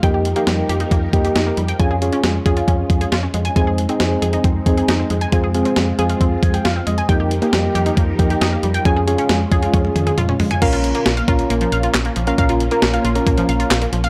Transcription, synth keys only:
\new Staff \with { instrumentName = "Synth keys" } { \time 4/4 \key bes \dorian \tempo 4 = 136 << { r1 | r1 | r1 | r2 r8 aes''16 g''16 f''8 ees''8 |
r1 | r1 | r1 | r1 | } \\ { <bes ees' g'>8 r16 <bes ees' g'>4~ <bes ees' g'>16 r8 <bes ees' g'>4 r8 | <des' f' aes'>16 r16 <des' f' aes'>8. r16 <des' f' aes'>4. r4 | <c' ees' aes'>8 r16 <c' ees' aes'>4~ <c' ees' aes'>16 r8 <c' ees' aes'>4 r8 | <c' f' aes'>16 r16 <c' f' aes'>8. r16 <c' f' aes'>4. r4 |
<bes ees' g'>8 r16 <bes ees' g'>4~ <bes ees' g'>16 r8 <bes ees' g'>4 r8 | <des' f' aes'>16 r16 <des' f' aes'>8. r16 <des' f' aes'>4. r4 | <des' f' bes'>4 r8 <des' f' bes'>4. r8. <des' f' bes'>16 | <des' f' bes'>8 r16 <des' f' bes'>8. r16 <des' f' bes'>4. r8. | } >> }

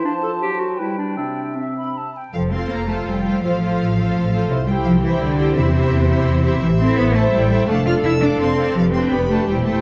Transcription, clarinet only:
\new Staff \with { instrumentName = "Clarinet" } { \time 3/4 \key c \major \tempo 4 = 167 d'8 a'8 g'8 fis'8 e'8 d'8 | d'4 c'4 r4 | \key f \major r2. | r2. |
r2. | r2. | \key g \mixolydian r2. | r2. |
r2. | }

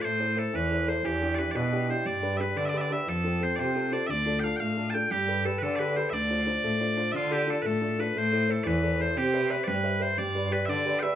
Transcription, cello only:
\new Staff \with { instrumentName = "Cello" } { \clef bass \time 6/8 \key d \dorian \tempo 4. = 118 a,4. e,4. | e,4. b,4. | g,4. d4. | f,4. c4. |
d,4. a,4. | g,4. d4. | d,4. a,4. | d4. a,4. |
a,4. e,4. | c4. g,4. | g,4. d4. | }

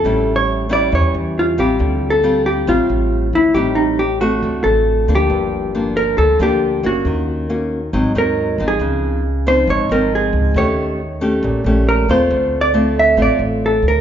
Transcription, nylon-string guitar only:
\new Staff \with { instrumentName = "Nylon-string guitar" } { \time 4/4 \key d \minor \tempo 4 = 137 << { <g cis' e'>4. <g cis' e'>2 <g c' f'>8~ | <g c' f'>4 <g c' f'>4 <g c' f'>4. r8 | <g c' ees'>4 r8 <a c' ges'>2 <f bes d'>8~ | <f bes d'>4 <f bes d'>4. <f bes d'>4 <bes des' ges'>8~ |
<bes des' ges'>4 <bes des' ges'>8 r8 <ges c' ees'>8 <ges c' ees'>4 <f c' ees'>8~ | <f c' ees'>4 r8 <f c' ees'>4 <f c' ees'>4. | <a des' g'>4 r8 <a des' g'>4 <a des' g'>4 <a c' f'>8~ | <a c' f'>4 <a c' f'>4 <a c' f'>4. r8 | } \\ { a,2 e2 | d2 a,2 | a,2 d2 | g,2 d2 |
ees2 aes,2 | des2 aes,2 | ees2 bes,2 | d2 a,2 | } >> }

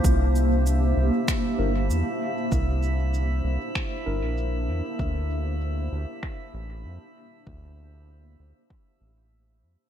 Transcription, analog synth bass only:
\new Staff \with { instrumentName = "Analog synth bass" } { \clef bass \time 4/4 \key c \mixolydian \tempo 4 = 97 c,4. c,16 r8. g,,8 e,16 r8. | c,4. c,16 r8. g,,16 bes,,8. e,16 r16 | d,4. d,16 r8. a,,8 f,16 r8. | d,4. d,16 r8. a,,4 f,16 r16 | }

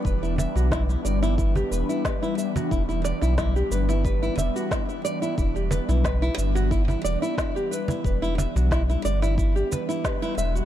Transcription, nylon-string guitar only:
\new Staff \with { instrumentName = "Nylon-string guitar" } { \time 4/4 \key e \minor \tempo 4 = 90 b'16 e'16 e''16 fis'16 e'16 e'16 d''16 e'16 e'16 g'16 b'16 e'16 b'16 e'16 e''16 fis'16 | e'16 e'16 d''16 e'16 e'16 g'16 b'16 e'16 b'16 e'16 e''16 fis'16 e'16 e'16 d''16 e'16 | e'16 g'16 b'16 e'16 b'16 e'16 e''16 fis'16 e'16 e'16 d''16 e'16 e'16 g'16 b'16 e'16 | b'16 e'16 e''16 fis'16 e'16 e'16 d''16 e'16 e'16 g'16 b'16 e'16 b'16 e'16 e''16 fis'16 | }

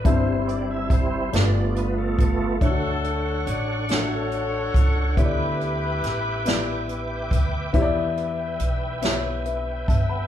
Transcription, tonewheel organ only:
\new Staff \with { instrumentName = "Tonewheel organ" } { \time 6/8 \key g \mixolydian \tempo 4. = 47 << { c''8 d''16 e''16 c''8 d''8 b'16 a'8. | \key d \major <fis'' cis'''>2. | <g'' d'''>2. | g''2. | } \\ { <g c' e'>4. <a b f'>4. | <d' a'>2. | <b' e''>2.~ | <b' e''>2. | } >> }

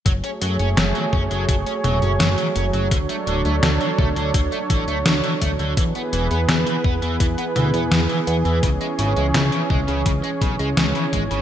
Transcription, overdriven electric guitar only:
\new Staff \with { instrumentName = "Overdriven electric guitar" } { \clef bass \time 4/4 \key fis \minor \tempo 4 = 84 fis16 cis'16 fis16 cis'16 fis16 fis16 cis'16 fis16 fis16 cis'16 fis16 cis'16 fis16 fis16 cis'16 fis16 | d16 a16 d16 a16 d16 d16 a16 d16 d16 a16 d16 a16 d16 d16 a16 d16 | e16 b16 e16 b16 e16 e16 b16 e16 e16 b16 e16 b16 e16 e16 b16 e16 | cis16 gis16 cis16 gis16 cis16 cis16 gis16 cis16 cis16 gis16 cis16 gis16 cis16 cis16 gis16 cis16 | }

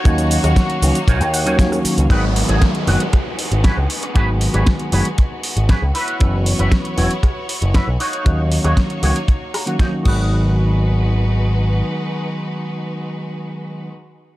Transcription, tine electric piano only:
\new Staff \with { instrumentName = "Tine electric piano" } { \time 4/4 \key gis \minor \tempo 4 = 117 <dis fis ais cis' fis'>4. <dis fis ais cis' fis'>16 r4 <dis fis ais cis' fis'>16 <dis fis ais cis' fis'>4 | <dis fis gis b fis'>4. <dis fis gis b fis'>16 r2 r16 | <dis fis gis b fis'>4. <dis fis gis b fis'>16 r2 r16 | <e fis b cis' fis'>4. <e fis b cis' fis'>16 r2 r16 |
<dis fis ais cis' fis'>4. <dis fis ais cis' fis'>16 r4 <dis fis ais cis' fis'>16 <dis fis ais cis' fis'>8 <dis fis gis b fis'>8~ | <dis fis gis b fis'>1~ | <dis fis gis b fis'>1 | }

